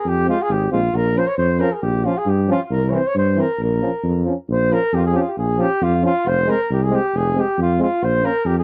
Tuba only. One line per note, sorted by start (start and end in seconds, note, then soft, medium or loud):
0.04 0.29 F2 medium
0.49 0.68 G#1 medium
0.72 0.91 A#1 medium
0.93 1.17 A#1 medium
1.38 1.62 F2 medium
1.82 2.06 A#1 medium
2.26 2.50 G2 medium
2.70 2.94 C2 medium
3.15 3.39 G2 medium
3.58 3.83 A#1 medium
4.03 4.27 F2 medium
4.48 4.72 A#1 medium
4.93 5.17 F2 medium
5.37 5.61 A#1 medium
5.81 6.05 F2 medium
6.25 6.49 F1 medium
6.70 6.94 C2 medium
7.14 7.37 F1 medium
7.58 7.81 F2 medium
8.02 8.25 A#1 medium
8.45 8.64 F2 medium